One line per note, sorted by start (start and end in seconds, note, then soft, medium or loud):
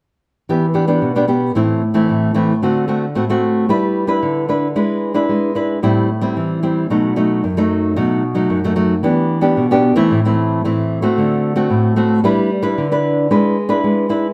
0.49 1.00 E3 medium
0.49 0.65 B3 soft
0.49 0.65 D4 soft
0.49 0.65 G4 medium
0.74 0.84 B3 soft
0.74 0.84 D4 soft
0.74 0.84 G4 soft
0.87 1.11 B3 soft
0.87 1.11 D4 medium
0.87 1.11 G4 soft
1.02 1.53 B2 soft
1.16 1.25 B3 soft
1.16 1.25 D4 medium
1.16 1.25 G4 medium
1.28 1.51 B3 soft
1.28 1.51 D4 soft
1.28 1.51 G4 medium
1.55 2.06 A2 medium
1.55 1.80 E3 soft
1.55 1.81 A3 soft
1.55 1.81 C4 soft
1.55 1.81 E4 medium
1.94 2.31 E3 soft
1.94 2.31 A3 medium
1.94 2.31 C4 soft
1.94 2.31 E4 medium
2.09 2.60 A2 medium
2.34 2.52 E3 medium
2.34 2.53 A3 soft
2.34 2.53 C4 soft
2.34 2.53 E4 soft
2.62 3.13 D3 medium
2.62 2.85 A3 soft
2.62 2.85 C4 soft
2.62 2.85 F#4 soft
2.88 3.04 A3 soft
2.88 3.05 C4 soft
2.88 3.05 F#4 medium
3.15 3.66 A2 medium
3.15 3.24 A3 soft
3.15 3.24 C4 soft
3.15 3.24 F#4 soft
3.30 3.65 A3 soft
3.30 3.65 C4 medium
3.30 3.66 F#4 medium
3.69 4.20 G3 medium
3.69 4.05 D4 medium
3.69 4.05 E4 soft
3.69 4.06 B4 medium
4.07 4.44 D4 medium
4.07 4.45 E4 medium
4.07 4.45 B4 medium
4.23 4.73 D3 medium
4.49 4.66 D4 soft
4.49 4.67 E4 medium
4.49 4.67 B4 soft
4.76 5.27 G#3 medium
4.76 5.12 D4 soft
4.76 5.12 E4 soft
4.76 5.12 B4 soft
5.14 5.51 D4 medium
5.14 5.51 E4 medium
5.14 5.52 B4 soft
5.29 5.80 G#3 medium
5.55 5.78 D4 soft
5.55 5.78 E4 soft
5.55 5.79 B4 soft
5.82 6.34 A2 medium
5.82 6.08 G3 medium
5.82 6.08 C4 medium
5.82 6.08 E4 medium
6.21 6.58 G3 medium
6.21 6.58 C4 soft
6.21 6.58 E4 medium
6.37 6.87 E3 medium
6.63 6.85 G3 soft
6.63 6.86 C4 soft
6.63 6.86 E4 soft
6.90 7.41 B2 medium
6.90 7.13 F#3 soft
6.90 7.13 A3 soft
6.90 7.13 D#4 medium
7.16 7.42 F#3 soft
7.16 7.42 A3 soft
7.16 7.42 D#4 medium
7.44 7.94 F#2 medium
7.57 7.93 F#3 medium
7.57 7.93 A3 medium
7.57 7.93 D#4 medium
7.96 8.47 B2 medium
7.96 8.22 F#3 soft
7.96 8.22 A3 medium
7.96 8.22 D#4 soft
8.35 8.58 F#3 medium
8.35 8.58 A3 soft
8.35 8.59 D#4 medium
8.50 9.01 F#2 medium
8.64 8.73 F#3 medium
8.64 8.73 A3 medium
8.64 8.73 D#4 medium
8.76 8.94 F#3 medium
8.76 8.94 A3 soft
8.76 8.94 D#4 soft
9.03 9.54 E3 medium
9.03 9.39 B3 medium
9.03 9.39 D4 soft
9.03 9.40 G4 medium
9.41 9.65 B3 medium
9.41 9.65 D4 medium
9.41 9.65 G4 medium
9.57 9.95 B2 medium
9.71 9.93 B3 medium
9.71 9.93 D4 medium
9.71 9.93 G4 medium
9.96 10.19 E3 medium
9.96 10.19 A3 medium
9.96 10.19 C4 medium
9.96 10.19 E4 medium
10.11 10.61 A2 medium
10.25 10.60 E3 medium
10.25 10.61 A3 soft
10.25 10.61 C4 medium
10.25 10.61 E4 medium
10.64 11.15 A2 medium
10.64 11.00 E3 soft
10.64 11.00 A3 soft
10.64 11.00 C4 medium
10.64 11.01 E4 medium
11.02 11.52 A3 medium
11.02 11.52 C4 medium
11.02 11.53 F#4 medium
11.18 11.68 D3 medium
11.56 11.92 A3 medium
11.56 11.93 C4 medium
11.56 11.93 F#4 medium
11.70 12.21 A2 medium
11.96 12.19 A3 medium
11.96 12.19 C4 medium
11.96 12.20 F#4 medium
12.24 12.75 G3 medium
12.24 12.49 D4 medium
12.24 12.49 E4 medium
12.24 12.50 B4 medium
12.62 12.86 D4 medium
12.62 12.86 E4 medium
12.62 12.86 B4 medium
12.78 13.28 D3 medium
12.92 13.27 D4 medium
12.92 13.27 E4 soft
12.92 13.27 B4 medium
13.31 13.82 G#3 medium
13.31 13.56 D4 medium
13.31 13.56 E4 soft
13.31 13.56 B4 medium
13.69 14.06 D4 medium
13.69 14.06 E4 medium
13.69 14.06 B4 medium
13.84 14.33 G#3 medium
14.09 14.26 D4 medium
14.09 14.26 E4 medium
14.09 14.26 B4 soft